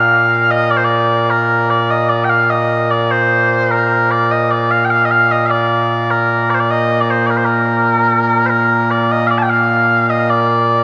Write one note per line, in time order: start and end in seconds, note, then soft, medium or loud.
0.00 10.84 A#2 medium
0.00 10.84 A#3 medium
0.00 0.51 F5 medium
0.51 0.71 D#5 loud
0.71 0.77 D5 loud
0.77 0.84 C5 medium
0.84 1.30 D5 loud
1.30 1.70 A#4 medium
1.70 1.91 D5 medium
1.91 2.09 D#5 loud
2.09 2.24 D5 medium
2.24 2.30 G5 medium
2.30 2.50 F5 medium
2.50 2.91 D#5 medium
2.91 3.11 D5 medium
3.11 3.71 C5 loud
3.71 4.11 A#4 medium
4.11 4.31 D5 medium
4.31 4.51 D#5 medium
4.51 4.71 D5 medium
4.71 4.85 F5 medium
4.85 4.90 G5 medium
4.90 5.05 F5 loud
5.05 5.11 D#5 medium
5.11 5.31 F5 loud
5.31 5.46 D#5 medium
5.46 5.50 F5 medium
5.50 6.11 D5 medium
6.11 6.50 A#4 medium
6.50 6.54 D5 medium
6.54 6.60 C5 medium
6.60 6.71 D5 medium
6.71 7.01 D#5 loud
7.01 7.10 D5 medium
7.10 7.26 C5 medium
7.26 7.37 A#4 medium
7.26 7.30 D5 medium
7.37 7.45 C5 medium
7.45 8.46 A#4 medium
8.46 8.91 A#4 medium
8.46 8.50 C5 medium
8.91 9.12 D5 medium
9.12 9.27 D#5 medium
9.27 9.38 D5 medium
9.27 9.30 F5 medium
9.38 9.42 A5 medium
9.42 9.50 G5 medium
9.50 10.10 F5 medium
10.10 10.30 D#5 medium
10.30 10.84 D5 loud